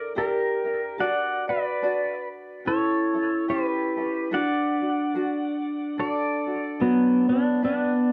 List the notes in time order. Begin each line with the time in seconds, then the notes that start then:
Already playing: D4 E4 A4 A#4 D5
0.15 D4 E4 G4 A#4
0.65 D4 E4 A#4
0.98 D4 F#4 A4 D5 F#5
1.48 D4 F#4 B4 D5
1.82 D4 F#4 A4 D5
2.65 C#4 E4 G4 A4 C#5
3.13 C#4 E4 A4
3.48 C#4 E4 G4 A4 B4
3.97 C#4 E4 A4
4.31 D4 F#4 A4 D5 F#5
4.81 D4 F#4
5.14 D4 F#4 A4
5.97 D4 F#4 A4 D5
6.46 D4 F#4
6.80 F#3 B3 D4 F#4 A4
7.28 B3 D4 F#4 C#5
7.62 B3 D4 G4 B4 D5